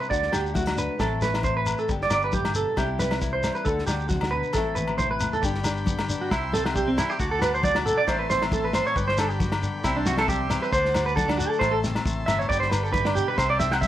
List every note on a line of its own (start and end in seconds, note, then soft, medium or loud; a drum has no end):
0.00 0.11 C3 medium
0.00 0.11 G3 medium
0.00 0.11 E4 medium
0.00 0.10 B4 medium
0.00 shekere soft
0.10 0.29 D2 medium
0.10 0.99 D3 medium
0.10 0.32 D4 medium
0.10 0.54 F#4 medium
0.10 0.32 D5 medium
0.10 kick medium
0.10 shekere medium
0.22 snare soft
0.32 0.87 D2 medium
0.32 0.75 D4 medium
0.32 0.54 G4 medium
0.32 snare medium
0.32 muted conga soft
0.32 low agogo medium
0.32 shekere medium
0.46 shekere soft
0.54 0.97 A3 medium
0.54 0.66 E4 medium
0.54 0.77 F#4 medium
0.54 kick medium
0.54 snare soft
0.54 high conga medium
0.54 shekere medium
0.66 0.99 F#4 soft
0.66 snare medium
0.66 low agogo medium
0.76 0.97 D4 medium
0.76 0.99 B4 medium
0.76 shekere medium
0.98 1.72 A1 medium
0.98 1.88 A2 medium
0.98 1.20 A3 medium
0.98 1.86 C4 medium
0.98 1.41 E4 medium
0.98 1.21 A4 medium
0.98 kick medium
0.98 snare medium
0.98 muted conga soft
0.98 high conga medium
0.98 low agogo medium
0.98 shekere medium
1.21 1.66 A3 medium
1.21 1.43 B4 medium
1.21 snare medium
1.21 shekere medium
1.34 snare medium
1.34 low agogo medium
1.34 shekere soft
1.42 1.85 E3 medium
1.42 1.88 E4 medium
1.42 1.56 C5 medium
1.42 kick medium
1.42 high conga medium
1.42 low conga medium
1.42 shekere medium
1.57 1.78 B4 medium
1.65 1.87 A3 medium
1.65 muted conga soft
1.65 low agogo medium
1.65 shekere medium
1.78 1.89 A4 medium
1.78 shekere soft
1.88 2.07 G1 medium
1.88 2.75 G2 medium
1.88 2.10 B3 medium
1.88 2.75 D4 medium
1.88 2.76 G4 medium
1.88 muted clean electric guitar stroke medium
1.88 kick medium
1.88 muted conga soft
1.88 shekere medium
2.01 2.12 D5 medium
2.01 snare soft
2.10 2.65 G1 medium
2.10 2.75 B3 medium
2.10 2.24 D5 medium
2.10 snare medium
2.10 low agogo medium
2.10 shekere loud
2.22 2.33 B4 medium
2.22 shekere soft
2.32 2.55 A2 medium
2.32 2.55 G4 medium
2.32 kick medium
2.32 high conga medium
2.32 shekere medium
2.45 snare medium
2.45 low agogo medium
2.54 2.76 B2 medium
2.54 2.77 A4 medium
2.54 shekere medium
2.77 3.49 C2 medium
2.77 3.21 C3 medium
2.77 2.99 G3 medium
2.77 3.64 C4 medium
2.77 3.21 E4 medium
2.77 2.99 G4 medium
2.77 kick medium
2.77 snare medium
2.77 low agogo medium
2.77 shekere medium
2.99 3.43 G3 medium
2.99 3.21 B4 medium
2.99 snare medium
2.99 high conga medium
2.99 shekere medium
3.11 snare medium
3.11 low agogo medium
3.11 shekere soft
3.21 3.63 E3 medium
3.21 3.66 E4 medium
3.21 kick medium
3.21 snare soft
3.21 high conga medium
3.21 shekere medium
3.33 3.54 C5 medium
3.43 3.66 G3 medium
3.43 snare medium
3.43 low agogo medium
3.43 shekere medium
3.55 3.65 B4 medium
3.55 shekere soft
3.65 3.84 D2 medium
3.65 4.55 D3 medium
3.65 3.89 D4 medium
3.65 4.53 F#4 medium
3.65 3.86 A4 medium
3.65 kick medium
3.65 muted conga soft
3.65 shekere medium
3.78 snare soft
3.87 4.42 D2 medium
3.87 4.53 D4 medium
3.87 4.08 G4 medium
3.87 snare medium
3.87 muted conga soft
3.87 low agogo medium
3.87 shekere medium
4.00 shekere soft
4.09 4.32 C3 medium
4.09 4.31 F#4 medium
4.09 kick medium
4.09 snare soft
4.09 high conga medium
4.09 shekere medium
4.21 snare medium
4.21 low agogo medium
4.31 4.55 B2 medium
4.31 4.53 B4 medium
4.31 low conga medium
4.43 shekere soft
4.53 5.26 A1 medium
4.53 5.43 A2 medium
4.53 4.77 A3 medium
4.53 5.41 C4 medium
4.53 4.75 A4 medium
4.53 kick medium
4.53 snare soft
4.53 muted conga soft
4.53 high conga medium
4.53 low agogo medium
4.53 shekere medium
4.58 4.98 E4 medium
4.75 4.97 B4 medium
4.75 high tom soft
4.75 shekere medium
4.87 high tom soft
4.87 low agogo medium
4.87 shekere soft
4.98 5.41 E3 medium
4.98 5.43 E4 medium
4.98 5.10 C5 medium
4.98 kick medium
4.98 mid tom medium
4.98 high conga medium
4.98 low conga medium
4.98 shekere medium
5.11 5.32 B4 medium
5.20 5.41 A3 medium
5.20 floor tom medium
5.20 muted conga soft
5.20 low agogo medium
5.20 shekere medium
5.33 5.43 A4 medium
5.33 floor tom medium
5.33 shekere soft
5.41 6.14 G1 medium
5.41 6.28 G2 medium
5.41 6.07 D3 medium
5.41 5.85 B3 medium
5.41 5.62 D4 medium
5.41 6.30 G4 medium
5.41 6.30 D5 medium
5.41 7.18 G5 medium
5.41 6.30 B5 medium
5.41 kick medium
5.41 shekere medium
5.55 snare soft
5.63 6.08 D4 medium
5.63 snare medium
5.63 low agogo medium
5.63 shekere loud
5.77 shekere soft
5.86 6.28 B3 medium
5.86 kick medium
5.86 high conga medium
5.86 shekere medium
5.99 snare medium
5.99 low agogo medium
6.08 6.31 D3 medium
6.08 6.29 D4 medium
6.08 shekere loud
6.21 6.31 F#4 medium
6.30 7.03 C2 medium
6.30 6.97 C3 medium
6.30 6.53 E4 medium
6.30 7.19 E5 medium
6.30 7.18 C6 medium
6.30 kick medium
6.30 snare medium
6.30 low agogo medium
6.30 shekere medium
6.52 6.95 C4 medium
6.52 6.65 A4 loud
6.52 snare medium
6.52 high conga medium
6.52 shekere medium
6.65 6.75 F#4 medium
6.65 snare medium
6.65 low agogo medium
6.74 7.19 G3 medium
6.74 6.87 G4 medium
6.74 kick medium
6.74 high conga medium
6.74 shekere medium
6.88 6.97 C4 medium
6.96 7.16 E3 medium
6.96 7.17 C4 medium
6.96 7.10 E4 medium
6.96 snare medium
6.96 low agogo medium
6.96 shekere medium
7.10 7.19 G4 medium
7.10 shekere soft
7.18 7.91 D2 medium
7.18 8.07 D3 medium
7.18 7.31 F#4 medium
7.18 8.08 F#5 medium
7.18 8.95 A5 medium
7.18 8.08 D6 medium
7.18 kick medium
7.18 muted conga soft
7.18 shekere medium
7.31 7.41 A4 medium
7.39 8.04 F#4 medium
7.39 7.53 B4 loud
7.39 snare medium
7.39 low agogo medium
7.39 shekere medium
7.54 7.64 C5 medium
7.54 shekere soft
7.63 7.84 C3 medium
7.63 7.76 D5 loud
7.63 kick medium
7.63 snare soft
7.63 high conga medium
7.63 shekere medium
7.75 7.85 F#4 medium
7.75 snare medium
7.75 low agogo medium
7.84 8.07 B2 medium
7.84 7.97 A4 medium
7.84 shekere medium
7.98 8.07 D5 medium
8.07 8.79 A1 medium
8.07 8.96 A2 medium
8.07 8.72 E3 medium
8.07 8.51 A3 medium
8.07 8.29 C4 medium
8.07 8.97 E4 medium
8.07 8.19 C5 medium
8.07 8.96 E5 medium
8.07 8.96 C6 medium
8.07 kick medium
8.07 snare medium
8.07 muted conga soft
8.07 low agogo medium
8.07 shekere medium
8.19 8.29 B4 medium
8.30 8.73 C4 medium
8.30 8.42 C5 medium
8.30 snare medium
8.30 low conga medium
8.30 shekere medium
8.42 snare medium
8.42 low agogo medium
8.51 8.94 A3 medium
8.51 8.64 A4 medium
8.51 kick medium
8.51 snare soft
8.51 high conga medium
8.51 low conga medium
8.51 shekere medium
8.64 8.74 B4 medium
8.73 8.93 E3 medium
8.73 8.94 C4 medium
8.73 8.86 C5 medium
8.73 snare medium
8.73 muted conga soft
8.73 low agogo medium
8.73 shekere medium
8.87 8.96 C#5 medium
8.87 shekere soft
8.95 9.67 G1 loud
8.95 9.82 G2 medium
8.95 9.07 B4 medium
8.95 9.84 D5 medium
8.95 10.71 G5 medium
8.95 9.83 B5 medium
8.95 kick medium
8.95 muted conga soft
8.95 shekere medium
9.08 9.18 C5 medium
9.08 snare soft
9.18 9.62 D4 medium
9.18 9.30 A4 medium
9.18 snare medium
9.18 muted conga soft
9.18 low agogo medium
9.18 shekere medium
9.30 9.40 G4 medium
9.30 shekere soft
9.40 9.82 B3 medium
9.40 9.53 F#4 medium
9.40 kick medium
9.40 snare soft
9.40 high conga medium
9.40 shekere medium
9.52 snare medium
9.52 low agogo medium
9.62 9.84 D3 medium
9.62 9.82 D4 medium
9.62 shekere medium
9.84 10.56 C2 loud
9.84 10.50 C3 medium
9.84 10.48 E3 medium
9.84 10.27 G3 medium
9.84 10.06 C4 medium
9.84 9.96 E4 medium
9.84 10.73 E5 medium
9.84 10.72 C6 medium
9.84 kick medium
9.84 snare medium
9.84 low agogo medium
9.84 shekere medium
9.96 10.06 D4 medium
10.06 10.49 C4 medium
10.06 10.18 F#4 medium
10.06 snare medium
10.06 high conga medium
10.06 shekere medium
10.18 10.28 A4 loud
10.18 snare medium
10.18 low agogo medium
10.28 10.73 G3 medium
10.28 10.60 G4 medium
10.28 kick medium
10.28 high conga medium
10.28 shekere medium
10.49 10.70 E3 medium
10.49 10.70 C4 medium
10.49 snare medium
10.49 muted conga soft
10.49 low agogo medium
10.49 shekere medium
10.62 10.72 B4 medium
10.62 shekere soft
10.71 11.44 D2 medium
10.71 11.61 D3 medium
10.71 11.04 C5 medium
10.71 11.60 F#5 medium
10.71 12.47 A5 medium
10.71 11.60 D6 medium
10.71 kick medium
10.71 muted conga soft
10.71 shekere medium
10.85 snare soft
10.94 11.59 F#4 medium
10.94 snare medium
10.94 low agogo medium
10.94 shekere medium
11.06 11.16 B4 medium
11.06 shekere soft
11.16 11.37 D4 medium
11.16 11.28 A4 medium
11.16 kick medium
11.16 snare soft
11.16 high conga medium
11.16 shekere medium
11.28 11.38 D4 medium
11.28 snare medium
11.28 low agogo medium
11.37 11.58 A3 medium
11.37 11.58 D4 medium
11.37 11.49 F#4 medium
11.37 shekere medium
11.49 11.60 A4 medium
11.49 shekere soft
11.59 11.97 A1 medium
11.59 12.50 A2 medium
11.59 11.72 C5 medium
11.59 12.48 E5 medium
11.59 12.49 C6 medium
11.59 kick medium
11.59 snare medium
11.59 low agogo medium
11.59 shekere medium
11.71 11.78 A4 medium
11.84 12.26 C4 medium
11.84 snare medium
11.84 low conga medium
11.84 shekere medium
11.95 snare medium
11.95 low agogo medium
11.95 shekere soft
12.05 12.25 A1 medium
12.05 12.47 A3 medium
12.05 kick medium
12.05 high conga medium
12.05 low conga medium
12.05 shekere medium
12.26 12.47 G1 medium
12.26 12.47 E3 medium
12.26 12.47 C4 medium
12.26 12.39 E5 medium
12.26 snare medium
12.26 muted conga soft
12.26 low agogo medium
12.26 shekere medium
12.39 12.48 C#5 medium
12.39 shekere soft
12.48 13.21 G1 medium
12.48 13.35 G2 medium
12.48 13.38 D3 medium
12.48 13.36 B3 medium
12.48 12.72 D4 medium
12.48 13.37 G4 medium
12.48 12.60 D5 medium
12.48 13.37 D5 medium
12.48 13.87 G5 medium
12.48 13.37 B5 medium
12.48 kick medium
12.48 muted conga soft
12.48 shekere medium
12.60 12.70 C5 medium
12.60 snare soft
12.70 12.83 B4 medium
12.70 snare medium
12.70 muted conga soft
12.70 low agogo medium
12.70 shekere medium
12.83 12.92 A4 medium
12.83 shekere soft
12.92 13.15 A2 medium
12.92 13.05 B4 loud
12.92 kick medium
12.92 snare soft
12.92 high conga medium
12.92 shekere medium
13.05 13.15 D4 medium
13.05 snare medium
13.05 low agogo medium
13.15 13.38 B2 medium
13.15 13.27 G4 medium
13.15 shekere loud
13.28 13.38 B4 medium
13.37 13.87 C2 loud
13.37 13.87 C3 medium
13.37 13.49 C5 medium
13.37 13.87 E5 medium
13.37 13.87 C6 medium
13.37 kick medium
13.37 snare medium
13.37 low agogo medium
13.37 shekere medium
13.50 13.59 D5 medium
13.60 13.87 C4 medium
13.60 13.72 E5 loud
13.60 snare medium
13.60 high conga medium
13.60 shekere medium
13.71 13.81 F#5 loud
13.71 snare medium
13.71 low agogo medium
13.81 13.87 G3 medium
13.81 13.87 E5 medium
13.81 kick medium
13.81 snare soft
13.81 high conga medium
13.81 shekere medium